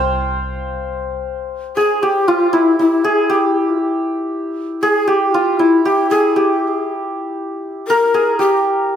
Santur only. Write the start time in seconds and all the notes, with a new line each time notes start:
Already playing: C5 F5 G5
1.77 G#4
2.03 G4
2.28 F4
2.53 E4
2.79 E4
3.04 G#4
3.30 G4
4.83 G#4
5.07 G4
5.34 F4
5.59 E4
5.85 G4
6.11 G#4
6.36 G4
7.90 A#4
8.14 G#4
8.39 G4